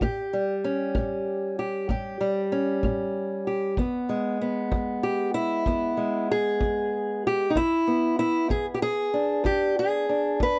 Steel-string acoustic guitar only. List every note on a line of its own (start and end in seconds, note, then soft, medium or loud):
0.02 0.58 A2 medium
0.02 1.58 G4 medium
0.33 2.19 G3 soft
0.64 2.51 C#4 medium
0.95 1.52 A2 medium
1.59 1.89 G4 medium
1.89 2.46 A2 medium
1.89 3.46 G4 medium
2.21 3.78 G3 medium
2.52 3.74 C#4 medium
2.84 3.41 A2 medium
3.47 3.75 G4 medium
3.78 4.35 E2 medium
3.78 4.41 B3 medium
4.09 5.96 G#3 soft
4.41 5.67 B3 soft
4.72 5.29 E2 medium
5.03 5.34 G4 medium
5.34 6.29 E4 medium
5.67 6.24 E2 medium
5.67 7.49 B3 soft
5.97 7.52 G#3 soft
6.32 7.25 G#4 loud
6.60 7.18 E2 medium
7.27 7.50 G4 medium
7.50 7.57 D#4 medium
7.56 8.13 E2 medium
7.56 8.18 E4 loud
7.87 10.59 B3 soft
8.19 8.50 E4 medium
8.49 9.07 E2 medium
8.49 8.65 G#4 medium
8.74 8.82 G4 medium
8.82 9.45 G#4 loud
9.14 10.08 D4 medium
9.44 10.01 E2 medium
9.44 9.77 G4 loud
9.79 10.41 G#4 loud
10.09 10.59 D4 soft
10.40 10.59 E2 medium
10.40 10.59 B4 loud